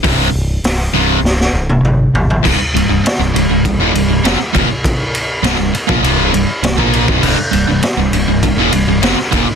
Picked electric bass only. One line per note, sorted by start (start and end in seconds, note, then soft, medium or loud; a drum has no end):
0.04 0.28 C1 medium
0.33 0.58 C1 medium
0.63 0.88 C1 medium
0.93 1.17 C1 medium
1.22 1.47 C1 loud
1.53 1.77 C1 medium
1.82 2.07 G1 medium
2.14 2.38 G1 medium
2.45 2.58 C1 loud
2.59 muted picked electric bass stroke soft
2.74 2.88 C1 medium
2.89 3.02 C1 medium
3.04 muted picked electric bass stroke soft
3.19 3.33 C1 medium
3.34 3.48 C1 medium
3.49 3.62 C1 medium
3.65 3.77 C1 medium
3.78 3.92 D#1 loud
3.93 4.07 C1 medium
4.08 4.22 C1 medium
4.23 4.37 F1 medium
4.38 muted picked electric bass stroke soft
4.55 4.67 D#1 medium
4.68 muted picked electric bass stroke soft
5.43 5.57 C1 loud
5.57 5.72 C1 medium
5.73 muted picked electric bass stroke soft
5.89 6.02 A#1 medium
6.02 6.30 C1 loud
6.33 6.47 C1 medium
6.47 muted picked electric bass stroke soft
6.62 6.76 C1 medium
6.78 7.05 A#1 loud
7.08 7.22 C1 loud
7.23 7.37 C1 loud
7.38 muted picked electric bass stroke soft
7.53 7.66 C1 medium
7.67 7.81 C1 medium
7.82 muted picked electric bass stroke soft
7.97 8.11 C1 medium
8.12 8.26 C1 medium
8.27 8.41 C1 medium
8.43 8.56 C1 medium
8.57 8.71 D#1 loud
8.72 8.86 C1 medium
8.87 9.01 C1 medium
9.01 9.16 F1 loud
9.17 muted picked electric bass stroke soft
9.33 9.46 D#1 loud
9.47 muted picked electric bass stroke soft